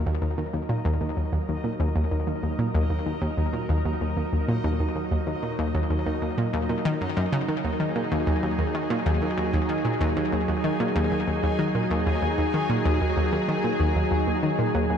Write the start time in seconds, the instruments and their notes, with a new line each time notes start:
Already playing: analog synth pad F#3 D#4 A#4, synth texture D#4 D#5
0.06 synth arpeggio sound D#2
0.22 synth arpeggio sound D#2
0.38 synth arpeggio sound D#2
0.53 synth arpeggio sound D#2
0.69 synth arpeggio sound A#2
0.85 synth arpeggio sound D#2
1.01 synth arpeggio sound D#2
1.17 synth arpeggio sound D#2
1.33 synth arpeggio sound D#2
1.49 synth arpeggio sound D#2
1.64 synth arpeggio sound A#2
1.80 synth arpeggio sound D#2
1.96 synth arpeggio sound D#2
2.11 synth arpeggio sound D#2
2.27 synth arpeggio sound D#2
2.43 synth arpeggio sound D#2
2.59 synth arpeggio sound A#2
2.75 synth arpeggio sound D#2
2.90 synth arpeggio sound D#2
3.06 synth arpeggio sound D#2
3.22 synth arpeggio sound D#2
3.37 synth arpeggio sound D#2
3.53 synth arpeggio sound A#2
3.69 synth arpeggio sound D#2
3.85 synth arpeggio sound D#2
4.01 synth arpeggio sound D#2
4.17 synth arpeggio sound D#2
4.33 synth arpeggio sound D#2
4.48 synth arpeggio sound A#2
4.64 synth arpeggio sound D#2
4.80 synth arpeggio sound D#2
4.96 synth arpeggio sound D#2
5.11 synth arpeggio sound D#2
5.27 synth arpeggio sound D#2
5.43 synth arpeggio sound A#2
5.59 synth arpeggio sound D#2
5.74 synth arpeggio sound D#2
5.90 synth arpeggio sound D#2
6.06 synth arpeggio sound D#2
6.22 synth arpeggio sound D#2
6.38 synth arpeggio sound A#2
6.53 synth arpeggio sound D#2
6.69 synth arpeggio sound A#2
6.85 synth arpeggio sound D#3
7.01 synth arpeggio sound F#2
7.17 synth arpeggio sound F#2
7.32 synth arpeggio sound C#3
7.48 synth arpeggio sound D#3
7.64 synth arpeggio sound D#2, analog synth pad G#4, synth texture G#5
7.80 synth arpeggio sound D#3
7.96 synth arpeggio sound A#2
8.11 synth arpeggio sound D#2
8.27 synth arpeggio sound D#2
8.43 synth arpeggio sound D#2
8.59 synth arpeggio sound D#2
8.75 synth arpeggio sound D#3
8.90 synth arpeggio sound A#2
9.06 synth arpeggio sound D#2
9.22 synth arpeggio sound D#2
9.38 synth arpeggio sound D#2
9.53 synth arpeggio sound D#2
9.69 synth arpeggio sound D#3
9.85 synth arpeggio sound A#2
10.01 synth arpeggio sound D#2
10.17 synth arpeggio sound D#2
10.32 synth arpeggio sound D#2
10.48 synth arpeggio sound D#2
10.64 synth arpeggio sound D#3
10.80 synth arpeggio sound A#2
10.96 synth arpeggio sound D#2
11.12 synth arpeggio sound D#2
11.27 synth arpeggio sound D#2
11.43 synth arpeggio sound D#2
11.59 synth arpeggio sound D#3
11.75 synth arpeggio sound A#2
11.91 synth arpeggio sound D#2
12.06 synth arpeggio sound D#2
12.22 synth arpeggio sound D#2
12.38 synth arpeggio sound D#2
12.54 synth arpeggio sound D#3
12.70 synth arpeggio sound A#2
12.85 synth arpeggio sound D#2
13.01 synth arpeggio sound D#2
13.17 synth arpeggio sound D#2
13.32 synth arpeggio sound D#2
13.48 synth arpeggio sound D#3
13.64 synth arpeggio sound A#2
13.80 synth arpeggio sound D#2
13.96 synth arpeggio sound D#2
14.11 synth arpeggio sound D#2
14.27 synth arpeggio sound D#2
14.43 synth arpeggio sound D#3
14.59 synth arpeggio sound A#2
14.74 synth arpeggio sound D#2
14.90 synth arpeggio sound D#2